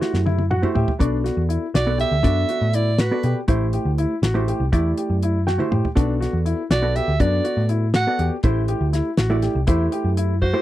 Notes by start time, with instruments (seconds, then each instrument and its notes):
Already playing: hollow-body jazz guitar A3 E4 G4 C5
0.01 grand piano F#4, snare
0.14 picked electric bass F#2, snare
0.26 grand piano E4, high tom
0.39 high tom
0.51 grand piano F#4, hollow-body jazz guitar F#5, mid tom
0.62 hollow-body jazz guitar A3 E4 G4 C5, mid tom
0.75 picked electric bass A2, grand piano G4, hollow-body jazz guitar E5, floor tom
0.88 floor tom
0.99 picked electric bass B1, hollow-body jazz guitar B3 F#4 A4 D5, grand piano D4, kick, closed hi-hat
1.24 grand piano F#4, snare, closed hi-hat
1.37 picked electric bass E2
1.49 grand piano E4, closed hi-hat
1.74 picked electric bass B1, grand piano F#4, soprano saxophone D5, snare, closed hi-hat
1.87 hollow-body jazz guitar B3 F#4 A4 D5
1.98 grand piano G4, soprano saxophone E5, closed hi-hat
2.12 picked electric bass D2
2.23 picked electric bass F#2, hollow-body jazz guitar B3 F#4 A4 D5, grand piano D4, kick, closed hi-hat
2.49 grand piano F#4, closed hi-hat
2.61 picked electric bass A2
2.73 grand piano E4, soprano saxophone D5, closed hi-hat
2.98 grand piano F#4, soprano saxophone B4, snare, closed hi-hat
3.11 hollow-body jazz guitar B3 F#4 A4 D5
3.23 picked electric bass B2, grand piano G4, closed hi-hat
3.48 picked electric bass A1, hollow-body jazz guitar A3 E4 G4 C5, grand piano E4, kick, closed hi-hat
3.73 grand piano G4, closed hi-hat
3.85 picked electric bass D2
3.98 grand piano E4, closed hi-hat
4.22 picked electric bass A1, grand piano F#4, snare, closed hi-hat
4.34 hollow-body jazz guitar A3 E4 G4 C5
4.48 grand piano G4, closed hi-hat
4.60 picked electric bass C2
4.72 picked electric bass E2, hollow-body jazz guitar A3 E4 G4 D5, grand piano E4, kick, closed hi-hat
4.98 grand piano G4, closed hi-hat
5.10 picked electric bass F#2
5.23 grand piano E4, closed hi-hat
5.47 grand piano F#4, hollow-body jazz guitar G5, snare
5.58 hollow-body jazz guitar A3 E4 G4 C5, high tom
5.71 picked electric bass A2, grand piano G4, mid tom
5.85 floor tom
5.95 picked electric bass B1, hollow-body jazz guitar B3 F#4 A4 D5, grand piano D4, kick, closed hi-hat
6.20 grand piano F#4, snare, closed hi-hat
6.33 picked electric bass E2
6.46 grand piano E4, closed hi-hat
6.70 picked electric bass B1, grand piano F#4, soprano saxophone D5, snare, closed hi-hat
6.82 hollow-body jazz guitar B3 F#4 A4 D5
6.95 grand piano G4, soprano saxophone E5, closed hi-hat
7.08 picked electric bass D2
7.20 picked electric bass F#2, hollow-body jazz guitar B3 F#4 A4 D5, grand piano D4, soprano saxophone D5, kick, closed hi-hat
7.44 grand piano F#4, closed hi-hat
7.57 picked electric bass A2
7.69 grand piano E4, closed hi-hat
7.94 grand piano F#4, soprano saxophone F#5, snare, closed hi-hat
8.07 hollow-body jazz guitar B3 F#4 A4 D5
8.19 picked electric bass E2, grand piano G4, closed hi-hat
8.43 picked electric bass A1, hollow-body jazz guitar A3 E4 G4 C5, grand piano E4, kick, closed hi-hat
8.68 grand piano G4, closed hi-hat
8.81 picked electric bass D2
8.93 grand piano E4, snare, closed hi-hat
9.17 picked electric bass A1, grand piano F#4, snare, closed hi-hat
9.30 hollow-body jazz guitar A3 E4 G4 D5
9.42 grand piano G4, snare, closed hi-hat
9.55 picked electric bass C2
9.67 picked electric bass E2, hollow-body jazz guitar A3 E4 G4 C5, grand piano E4, kick, closed hi-hat
9.92 grand piano G4, closed hi-hat
10.04 picked electric bass F#2
10.17 grand piano E4, closed hi-hat
10.42 grand piano F#4, soprano saxophone C5, kick
10.53 hollow-body jazz guitar A3 E4 G4 C5